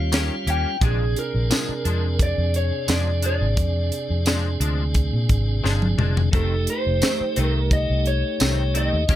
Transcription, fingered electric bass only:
0.00 0.29 D#2 medium
0.47 0.64 D#2 medium
0.82 1.14 A#1 medium
1.34 1.50 A#1 medium
1.69 muted fingered electric bass stroke soft
1.85 2.35 F2 medium
2.38 2.70 F2 medium
2.89 3.38 F2 medium
3.41 3.56 G#1 medium
3.57 3.90 F2 loud
4.10 4.58 F2 medium
4.60 5.10 D2 loud
5.13 5.29 A#2 medium
5.30 5.61 G#1 medium
5.64 5.95 G1 medium
5.98 6.30 F1 medium
6.33 6.65 F1 medium
6.86 7.01 F1 medium
7.21 muted fingered electric bass stroke soft
7.37 7.86 C2 medium
7.90 8.22 C2 medium
8.41 8.90 C2 medium
8.93 9.08 D#2 medium
9.09 9.16 D#2 medium

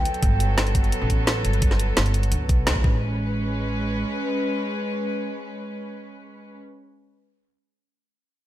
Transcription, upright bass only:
0.23 0.91 G1 loud
1.01 1.43 A1 loud
1.45 1.96 G1 medium
1.97 2.31 G1 medium
2.32 2.49 D2 medium
2.49 2.65 B1 medium
2.67 2.84 D2 loud
2.84 4.02 A1 medium

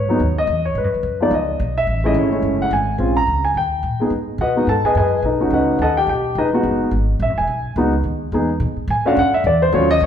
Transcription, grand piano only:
0.00 0.35 C#5 medium
0.09 0.19 F#3 medium
0.09 0.19 G#3 soft
0.09 0.20 B3 medium
0.09 0.20 D#4 medium
0.38 0.64 D#5 medium
0.65 0.76 C#5 medium
0.78 1.18 B4 medium
1.20 1.31 F3 soft
1.20 1.31 G#3 soft
1.20 1.31 B3 soft
1.20 1.32 D#4 medium
1.20 1.33 D5 medium
1.34 1.74 D#5 medium
1.78 2.03 E5 medium
2.04 2.30 G#3 medium
2.04 2.30 A3 medium
2.04 2.31 C#4 medium
2.04 2.31 E4 medium
2.04 2.16 D#5 medium
2.17 2.58 C#5 medium
2.31 2.69 G#3 medium
2.31 2.69 A3 soft
2.31 2.69 C#4 soft
2.31 2.70 E4 medium
2.62 2.72 F#5 medium
2.73 3.14 G#5 medium
2.98 3.14 G#3 soft
2.98 3.14 C4 soft
2.98 3.14 C#4 soft
2.98 3.14 F4 soft
3.17 3.42 A#5 medium
3.45 3.55 G#5 medium
3.57 3.98 G5 medium
4.00 4.10 G#3 soft
4.00 4.11 B3 soft
4.00 4.11 D#4 soft
4.00 4.11 G#4 medium
4.41 4.56 F#4 soft
4.41 4.67 B4 soft
4.41 4.66 D#5 medium
4.41 4.66 F#5 medium
4.56 4.66 G#3 soft
4.56 4.67 B3 soft
4.56 4.67 D#4 soft
4.56 4.67 F#4 medium
4.69 4.85 A4 medium
4.69 4.84 A5 medium
4.85 4.96 G#4 medium
4.85 4.96 B4 medium
4.85 4.96 D#5 medium
4.85 4.96 G#5 medium
4.97 5.23 G#4 medium
4.97 5.23 B4 medium
4.97 5.23 D#5 medium
4.97 5.23 G#5 medium
5.25 5.39 D#4 soft
5.25 5.41 A4 soft
5.25 5.41 B4 soft
5.25 5.40 D#5 soft
5.40 5.77 A3 medium
5.40 5.78 C#4 soft
5.40 5.78 D#4 soft
5.40 5.52 F#4 medium
5.53 5.79 F#4 soft
5.53 5.79 B4 soft
5.53 5.79 D#5 soft
5.53 5.79 F#5 medium
5.82 5.97 A4 medium
5.82 5.97 D#5 medium
5.82 5.97 F#5 medium
5.82 5.97 A5 medium
5.97 6.08 G4 medium
5.97 6.08 G5 medium
6.09 6.35 G4 medium
6.09 6.35 G5 medium
6.38 6.48 D#4 medium
6.38 6.48 G#4 medium
6.38 6.48 B4 medium
6.38 6.47 D#5 medium
6.53 6.90 G#3 medium
6.53 6.90 B3 soft
6.53 6.91 D#4 soft
6.53 6.91 F#4 medium
7.22 7.37 E5 medium
7.38 7.74 G#5 medium
7.77 7.92 G#3 medium
7.77 7.92 B3 medium
7.77 7.92 D#4 medium
7.77 7.92 F#4 medium
8.33 8.48 G#3 medium
8.33 8.48 B3 soft
8.33 8.48 D#4 soft
8.33 8.48 G#4 medium
8.90 9.06 G#5 medium
9.05 9.16 A3 medium
9.05 9.16 C#4 medium
9.05 9.16 D4 medium
9.05 9.17 F#4 medium
9.05 9.17 F5 medium
9.19 9.34 F#5 medium
9.34 9.45 E5 medium
9.47 9.62 D5 medium
9.62 9.73 C5 medium
9.73 9.87 F#3 medium
9.73 9.88 A3 medium
9.73 9.88 C#4 medium
9.73 9.88 F4 medium
9.73 9.90 C#5 medium
9.91 10.01 D#5 medium
10.03 10.06 C#5 medium

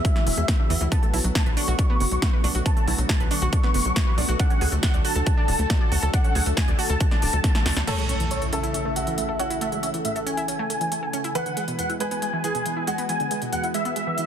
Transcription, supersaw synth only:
0.00 0.83 E5 loud
0.92 1.20 A5 loud
1.35 1.49 A5 medium
1.57 2.57 C#6 loud
2.66 2.94 A5 loud
3.09 3.23 A5 medium
3.31 4.31 C#6 loud
4.39 4.67 F#5 loud
4.83 4.97 F#5 medium
5.05 6.05 A5 loud
6.13 6.42 F#5 loud
6.57 6.71 G#5 medium
6.79 7.79 A5 loud
7.87 8.15 C#5 medium
8.31 8.45 C#5 medium
8.53 9.53 E5 medium
9.61 9.89 E5 medium
10.05 10.19 E5 medium
10.26 11.27 G#5 medium
11.35 11.63 F#5 medium
11.79 11.93 F#5 medium
12.00 13.00 G#5 medium
13.09 13.37 G#5 medium
13.53 13.67 F#5 medium
13.74 14.26 E5 loud

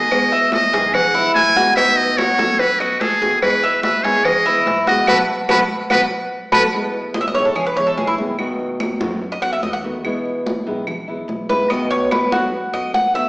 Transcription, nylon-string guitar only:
0.00 0.11 D#3 medium
0.00 0.11 A3 medium
0.00 0.10 B3 medium
0.00 0.10 F#4 medium
0.11 0.72 B2 medium
0.11 0.73 G#3 medium
0.11 0.73 B3 medium
0.11 0.72 E4 medium
0.73 0.93 D#3 medium
0.73 0.93 G#3 medium
0.73 0.93 B3 medium
0.73 0.93 E4 medium
0.94 muted nylon-string guitar stroke medium
1.15 1.55 G#3 soft
1.15 1.56 B3 soft
1.15 1.55 E4 medium
1.56 1.75 D#3 medium
1.56 1.76 G#3 medium
1.56 1.76 B3 medium
1.56 1.76 E4 medium
1.76 2.38 B2 medium
1.76 2.38 D#3 medium
1.76 2.38 A3 medium
1.76 2.39 B3 medium
1.76 2.38 F#4 medium
2.39 2.59 D#3 medium
2.39 2.59 A3 medium
2.39 2.59 B3 medium
2.39 2.59 F#4 medium
2.60 muted nylon-string guitar stroke medium
2.80 3.21 A3 soft
2.80 3.21 B3 soft
2.80 3.20 F#4 medium
3.21 3.42 D#3 medium
3.21 3.42 A3 medium
3.21 3.41 B3 medium
3.21 3.41 F#4 medium
3.42 4.03 B2 medium
3.42 4.04 G#3 medium
3.42 4.04 B3 medium
3.42 4.03 E4 medium
4.04 4.24 D#3 medium
4.04 4.24 G#3 medium
4.04 4.24 B3 medium
4.04 4.24 E4 medium
4.25 muted nylon-string guitar stroke medium
4.46 4.87 G#3 soft
4.46 4.87 B3 soft
4.46 4.86 E4 medium
4.87 5.08 D#3 medium
4.87 5.07 G#3 medium
4.87 5.07 B3 medium
4.87 5.07 E4 medium
5.08 5.21 F#3 medium
5.08 5.21 A3 loud
5.08 5.21 B3 loud
5.49 5.62 F#3 loud
5.49 5.62 A3 loud
5.49 5.62 B3 loud
5.91 6.04 F#3 medium
5.91 6.04 A3 loud
5.91 6.04 B3 loud
6.52 6.66 F#3 medium
6.52 6.66 A3 medium
6.52 6.66 B3 loud
6.73 7.34 B2 medium
6.73 7.35 G#3 medium
6.73 7.35 B3 medium
6.73 7.34 E4 medium
7.35 7.55 D#3 medium
7.35 7.55 G#3 medium
7.35 7.55 B3 medium
7.35 7.55 E4 medium
7.56 muted nylon-string guitar stroke medium
7.77 8.18 G#3 soft
7.77 8.17 B3 soft
7.77 8.16 E4 soft
8.17 8.38 D#3 medium
8.17 8.38 G#3 medium
8.17 8.38 B3 medium
8.17 8.38 E4 medium
8.38 9.00 B2 medium
8.38 9.00 D#3 medium
8.38 9.00 A3 medium
8.38 9.00 B3 medium
8.38 8.99 F#4 medium
9.00 9.21 D#3 medium
9.00 9.21 A3 medium
9.00 9.21 B3 medium
9.00 9.20 F#4 medium
9.22 muted nylon-string guitar stroke medium
9.43 9.84 A3 soft
9.43 9.83 B3 soft
9.43 9.82 F#4 medium
9.84 10.04 D#3 medium
9.84 10.04 A3 medium
9.84 10.04 B3 medium
9.84 10.04 F#4 medium
10.04 10.65 B2 medium
10.04 10.66 G#3 medium
10.04 10.66 B3 medium
10.04 10.65 E4 medium
10.67 10.86 D#3 medium
10.67 10.87 G#3 medium
10.67 10.86 B3 medium
10.67 10.86 E4 medium
10.87 muted nylon-string guitar stroke medium
11.08 11.49 G#3 soft
11.08 11.48 B3 soft
11.08 11.48 E4 soft
11.49 11.70 D#3 medium
11.49 11.70 G#3 medium
11.49 11.69 B3 medium
11.49 11.69 E4 medium
11.71 12.32 B2 medium
11.71 12.32 D#3 medium
11.71 12.32 A3 medium
11.71 12.32 B3 medium
11.71 12.30 F#4 medium
12.32 12.51 D#3 medium
12.32 12.52 A3 medium
12.32 12.51 B3 medium
12.32 12.51 F#4 medium
12.52 muted nylon-string guitar stroke medium
12.73 13.14 A3 soft
12.73 13.13 B3 soft
12.73 13.13 F#4 soft
13.14 13.29 D#3 medium
13.14 13.29 A3 medium
13.14 13.29 B3 medium
13.14 13.29 F#4 medium

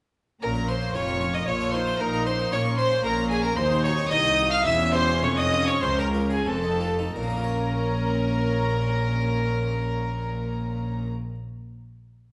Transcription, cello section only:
0.43 0.92 A#2 medium
0.96 1.47 F2 medium
1.48 1.99 A#2 medium
2.00 2.52 A#2 medium
2.53 3.04 A#3 medium
3.05 3.57 A#2 medium
3.58 4.10 D#2 medium
4.11 4.65 C2 medium
4.66 5.22 E2 medium
5.23 5.83 F2 medium
5.83 6.46 C#2 medium
6.48 7.15 F2 medium
7.17 11.08 A#2 medium

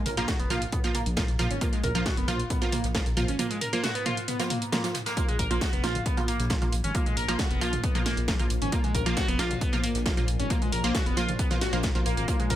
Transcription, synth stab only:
0.17 0.37 F3 loud
0.17 0.37 A#3 medium
0.17 0.37 F4 loud
0.50 0.63 F3 medium
0.50 0.63 A#3 medium
0.50 0.63 F4 loud
0.84 0.96 F3 loud
0.84 0.96 A#3 medium
0.84 0.96 F4 loud
1.17 1.30 F3 medium
1.17 1.30 A#3 medium
1.17 1.30 F4 loud
1.39 1.52 F3 loud
1.39 1.52 A#3 medium
1.39 1.52 F4 loud
1.61 1.81 F3 medium
1.61 1.81 A#3 medium
1.61 1.81 F4 medium
1.95 2.15 F3 loud
1.95 2.15 A#3 medium
1.95 2.15 F4 loud
2.28 2.41 F3 medium
2.28 2.41 A#3 medium
2.28 2.41 F4 loud
2.62 2.74 F3 medium
2.62 2.74 A#3 medium
2.62 2.74 F4 loud
2.95 3.07 F3 medium
2.95 3.07 A#3 medium
2.95 3.07 F4 loud
3.17 3.30 F3 medium
3.17 3.30 A#3 medium
3.17 3.30 F4 loud
3.39 3.59 F3 medium
3.39 3.59 A#3 medium
3.39 3.59 F4 medium
3.73 3.93 F3 loud
3.73 3.93 A#3 medium
3.73 3.93 F4 loud
4.06 4.19 F3 medium
4.06 4.19 A#3 medium
4.06 4.19 F4 loud
4.39 4.52 F3 medium
4.39 4.52 A#3 medium
4.39 4.52 F4 loud
4.72 4.82 F3 medium
4.72 4.82 A#3 medium
4.72 4.82 F4 medium
4.84 4.96 F3 medium
4.84 4.96 A#3 medium
4.84 4.96 F4 medium
5.17 5.37 F3 medium
5.17 5.37 A#3 medium
5.17 5.37 F4 medium
5.51 5.70 F3 loud
5.51 5.70 A#3 medium
5.51 5.70 F4 loud
5.83 5.96 F3 medium
5.83 5.96 A#3 medium
5.83 5.96 F4 loud
6.17 6.29 F3 medium
6.17 6.29 A#3 medium
6.17 6.29 F4 loud
6.50 6.60 F3 medium
6.50 6.60 A#3 medium
6.50 6.60 F4 medium
6.62 6.74 F3 medium
6.62 6.74 A#3 medium
6.62 6.74 F4 medium
6.95 7.15 F3 medium
6.95 7.15 A#3 medium
6.95 7.15 F4 medium
7.28 7.48 F3 loud
7.28 7.48 A#3 medium
7.28 7.48 F4 loud
7.61 7.74 F3 medium
7.61 7.74 A#3 medium
7.61 7.74 F4 loud
7.95 8.07 F3 loud
7.95 8.07 A#3 medium
7.95 8.07 F4 loud
8.28 8.38 F3 medium
8.28 8.38 A#3 medium
8.28 8.38 F4 medium
8.39 8.52 F3 medium
8.39 8.52 A#3 medium
8.39 8.52 F4 medium
8.72 8.92 F3 medium
8.72 8.92 A#3 medium
8.72 8.92 F4 medium
9.06 9.26 F3 loud
9.06 9.26 A#3 medium
9.06 9.26 F4 loud
9.39 9.52 F3 medium
9.39 9.52 A#3 medium
9.39 9.52 F4 loud
9.73 9.85 F3 loud
9.73 9.85 A#3 medium
9.73 9.85 F4 loud
10.06 10.16 F3 medium
10.06 10.16 A#3 medium
10.06 10.16 F4 medium
10.17 10.29 F3 medium
10.17 10.29 A#3 medium
10.17 10.29 F4 medium
10.50 10.70 F3 medium
10.50 10.70 A#3 medium
10.50 10.70 F4 medium
10.84 11.04 F3 loud
10.84 11.04 A#3 medium
10.84 11.04 F4 loud
11.17 11.30 F3 medium
11.17 11.30 A#3 medium
11.17 11.30 F4 loud
11.51 11.63 F3 medium
11.51 11.63 A#3 medium
11.51 11.63 F4 loud
11.73 11.92 F3 medium
11.73 11.92 A#3 medium
11.73 11.92 F4 loud
11.95 12.07 F3 medium
11.95 12.07 A#3 medium
11.95 12.07 F4 loud
12.28 12.48 F3 medium
12.28 12.48 A#3 medium
12.28 12.48 F4 medium

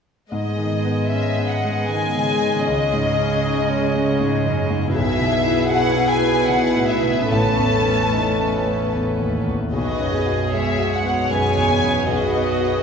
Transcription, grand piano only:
0.32 2.62 G#2 soft
0.58 1.00 D#3 soft
0.85 1.27 B3 soft
1.12 1.37 C#4 soft
1.37 1.78 B3 soft
1.64 2.05 G#3 soft
1.88 2.30 D#3 soft
2.14 2.40 C#3 soft
2.41 2.66 D#3 soft
2.67 4.91 C#2 soft
2.92 3.33 G#2 soft
3.18 3.58 C#4 soft
3.44 3.69 D#4 soft
3.69 4.09 C#4 soft
3.95 4.35 G#3 soft
4.20 4.60 G#2 soft
4.45 4.70 F#2 soft
4.70 4.95 G#2 soft
4.95 7.26 B1 medium
5.21 5.61 B2 soft
5.46 5.86 E4 soft
5.71 5.96 F#4 soft
5.95 6.37 E4 soft
6.22 6.64 B3 soft
6.49 6.92 B2 soft
6.75 7.03 A2 soft
7.02 7.30 B2 soft
7.31 9.70 A1 soft
7.58 8.02 E2 soft
7.86 8.29 C#4 soft
8.12 8.39 D#4 soft
8.39 8.83 C#4 soft
8.66 9.10 B3 soft
8.94 9.37 E2 soft
9.19 9.47 D#2 soft
9.46 9.74 E2 soft
9.73 12.05 B1 soft
9.99 10.42 F#2 soft
10.26 10.69 F#4 soft
10.53 10.80 G#4 soft
10.79 11.21 F#4 soft
11.04 11.47 B3 soft
11.31 11.73 F#2 soft
11.56 11.83 E2 soft
11.83 12.25 F#2 soft
12.08 12.83 B1 soft
12.35 12.76 B3 soft
12.60 12.83 F#4 soft

